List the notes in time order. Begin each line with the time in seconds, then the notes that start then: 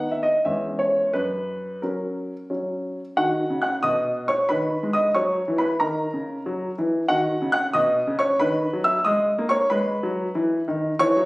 Already playing: D#3 B3 D#4
0.11 E5
0.23 D#5
0.45 E2 G#3 C#4 E5
0.79 C#5
1.13 F#2 B4
1.82 F#3 C#4 A#4
2.50 F#3 C#4
3.17 D#3 F#4 F#5
3.50 C#3
3.62 F#5 F#6
3.83 B2 D#5 D#6
4.28 C#5 C#6
4.49 D#3 B4 B5
4.83 G#3
4.93 D#5 D#6
5.15 F#3 C#5 C#6
5.48 E3
5.58 B4 B5
5.80 D#3 A#4 A#5
6.14 C#3
6.46 F#3
6.78 E3
7.08 D#3 F#4 F#5
7.42 C#3
7.52 F#5 F#6
7.73 B2 D#5 D#6
8.07 C#3
8.19 C#5 C#6
8.40 D#3 B4 B5
8.73 F#3
8.84 E5 E6
8.99 E6
9.05 G#3 D#5 D#6
9.38 A#3
9.49 C#5 C#6
9.70 G#3 B4 B5
10.03 F#3
10.35 E3
10.68 D#3
10.99 E3 C#5 C#6
11.17 F#3